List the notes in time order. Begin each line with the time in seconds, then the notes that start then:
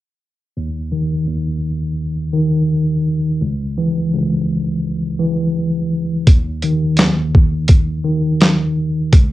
0.57 D#2
0.92 D#3
1.27 D#2
2.33 D#3
3.41 C#2
3.78 E3
4.13 C#2
5.19 E3
6.27 D#2, kick, closed hi-hat
6.62 D#3, closed hi-hat
6.97 D#2, cross-stick, snare, closed hi-hat
7.35 kick
7.68 kick, closed hi-hat
8.04 D#3
8.41 cross-stick, snare, closed hi-hat
9.12 C#2, kick, closed hi-hat